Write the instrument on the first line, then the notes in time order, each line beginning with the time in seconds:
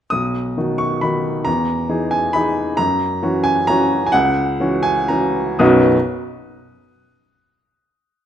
grand piano
0.10 B1 D#6
0.57 D#3 D#4 F#4
0.78 C#6
1.01 D#3 D#4 F#4 B5
1.45 E2 A#5
1.89 E3 D#4 G#4
2.11 G#5
2.33 E3 D#4 G#4 B5
2.77 F#2 A#5
3.23 E3 C#4 F#4
3.44 G#5
3.67 E3 C#4 F#4 A#5
4.06 G#5
4.12 C#2 F#5
4.60 E3 C#4 F#4
4.83 G#5
5.08 E3 C#4 F#4 A#5
5.59 B1 F#2 F#3 B3 D#4 F#4 D#6